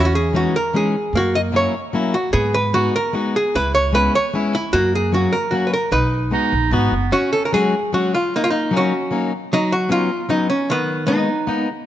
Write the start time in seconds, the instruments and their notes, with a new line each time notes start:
Already playing: upright bass E2, hollow-body jazz guitar C#4
0.05 hollow-body jazz guitar F#4
0.15 hollow-body jazz guitar G#4
0.33 steel-string acoustic guitar E3 G#3 C#4 D#4, hollow-body jazz guitar F#4
0.56 hollow-body jazz guitar A#4
0.74 steel-string acoustic guitar E3 G#3 C#4 D#4, hollow-body jazz guitar G#4
1.13 upright bass F#2, hollow-body jazz guitar A#3
1.17 hollow-body jazz guitar F#4
1.35 hollow-body jazz guitar D#5
1.52 steel-string acoustic guitar F#3 A#3 C#4 E4
1.56 hollow-body jazz guitar C#5
1.93 steel-string acoustic guitar F#3 A#3 C#4 E4
2.14 hollow-body jazz guitar F#4
2.33 upright bass G#2, hollow-body jazz guitar B3 G#4
2.54 hollow-body jazz guitar B4
2.74 steel-string acoustic guitar G#3 B3 D#4 F#4, hollow-body jazz guitar F#4
2.96 hollow-body jazz guitar A#4
3.13 steel-string acoustic guitar G#3 B3 D#4 F#4
3.36 hollow-body jazz guitar G#4
3.55 upright bass C#2, hollow-body jazz guitar E4 B4
3.75 hollow-body jazz guitar C#5
3.93 steel-string acoustic guitar G#3 B3 C#4 E4, hollow-body jazz guitar B4
4.15 hollow-body jazz guitar C#5
4.34 steel-string acoustic guitar G#3 B3 C#4 E4
4.55 hollow-body jazz guitar E4
4.73 upright bass F#2, hollow-body jazz guitar A#3 F#4
4.95 hollow-body jazz guitar G#4
5.12 steel-string acoustic guitar F#3 A#3 C#4 F#4, hollow-body jazz guitar F#4
5.33 hollow-body jazz guitar A#4
5.51 steel-string acoustic guitar F#3 A#3 C#4 F#4, hollow-body jazz guitar F#4
5.67 hollow-body jazz guitar B4
5.73 hollow-body jazz guitar A#4
5.92 upright bass B1, hollow-body jazz guitar D#4 B4
6.31 steel-string acoustic guitar G#3 B3 D#4 F#4, clarinet D#4
6.53 upright bass A#1
6.71 upright bass G#1, steel-string acoustic guitar G#3 B3 D#4 F#4, clarinet B3
6.92 upright bass F#1
7.12 hollow-body jazz guitar C#4 F#4
7.33 hollow-body jazz guitar A4
7.45 hollow-body jazz guitar A#4
7.53 steel-string acoustic guitar F#3 G#3 C#4 F#4, hollow-body jazz guitar G#4
7.93 steel-string acoustic guitar F#3 G#3 C#4 F#4, hollow-body jazz guitar F#4
8.15 hollow-body jazz guitar F4
8.36 hollow-body jazz guitar A#3 D#4
8.44 hollow-body jazz guitar F4
8.50 hollow-body jazz guitar D#4
8.71 steel-string acoustic guitar F#3 A#3 C#4 D#4
8.76 hollow-body jazz guitar C#4 F#4
9.11 steel-string acoustic guitar F#3 A#3 C#4 D#4
9.53 hollow-body jazz guitar F#3 D#4
9.72 hollow-body jazz guitar F#4
9.89 steel-string acoustic guitar F#3 B3 C#4 D#4, hollow-body jazz guitar F4
10.29 steel-string acoustic guitar F#3 B3 C#4 D#4, hollow-body jazz guitar D#4
10.50 hollow-body jazz guitar C#4
10.70 hollow-body jazz guitar D#3 B3
11.07 steel-string acoustic guitar G#3 A#3 B3 D#4, hollow-body jazz guitar B3 D#4
11.47 steel-string acoustic guitar G#3 A#3 B3 D#4